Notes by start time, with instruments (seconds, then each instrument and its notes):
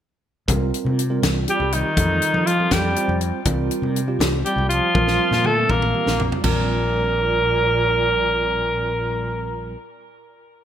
0.48 fretless electric bass C2, tine electric piano G3 C4 F4 A#4, kick, closed hi-hat, high conga, low conga
0.74 closed hi-hat
0.85 fretless electric bass C3, low conga
0.99 closed hi-hat, low conga
1.10 tine electric piano G3 C4 F4 A#4, low conga
1.22 fretless electric bass C2, snare, closed hi-hat, high conga, low conga
1.48 tine electric piano G3 C4 F4 G4, bass clarinet G3, alto saxophone G4, closed hi-hat
1.60 fretless electric bass C2, low conga
1.72 bass clarinet D#3, alto saxophone D#4, closed hi-hat
1.96 fretless electric bass F2, tine electric piano G3 C4 F4 A4, kick, closed hi-hat, high conga, low conga
2.22 closed hi-hat
2.34 fretless electric bass F3, low conga
2.47 bass clarinet F3, alto saxophone F4, closed hi-hat, low conga
2.59 tine electric piano G3 C4 F4 A4, low conga
2.71 fretless electric bass F2, bass clarinet G3, alto saxophone G4, kick, snare, closed hi-hat, high conga, low conga
2.96 tine electric piano G3 C4 F4 C5, closed hi-hat
3.08 fretless electric bass F2, low conga
3.21 closed hi-hat
3.45 fretless electric bass C2, tine electric piano G3 C4 F4 A#4, kick, closed hi-hat, high conga, low conga
3.71 closed hi-hat
3.82 fretless electric bass C3, low conga
3.96 closed hi-hat, low conga
4.08 tine electric piano G3 C4 F4 G4, low conga
4.19 fretless electric bass C2, snare, closed hi-hat, high conga, low conga
4.45 tine electric piano G3 C4 F4 G4, bass clarinet G3, alto saxophone G4, closed hi-hat
4.56 fretless electric bass C2, low conga
4.69 bass clarinet F3, alto saxophone F4, closed hi-hat
4.95 fretless electric bass A#1, tine electric piano G3 C4 F4 A#4, kick, high tom, high conga, low conga
5.08 snare
5.31 fretless electric bass A#2, snare, low conga
5.44 bass clarinet A3, alto saxophone A4, mid tom
5.58 tine electric piano G3 C4 F4 A#4, low conga
5.70 fretless electric bass A#1, bass clarinet A#3, alto saxophone A#4, kick, mid tom, high conga, low conga
5.82 mid tom, low conga
5.94 tine electric piano G3 C4 F4 G4, high conga
6.06 fretless electric bass A#1, snare, high conga
6.20 floor tom, low conga
6.32 floor tom, low conga
6.41 fretless electric bass A#1, bass clarinet A#2, tine electric piano G3 C4 F4, alto saxophone A#4, kick, floor tom, crash, high conga
6.45 tine electric piano A#4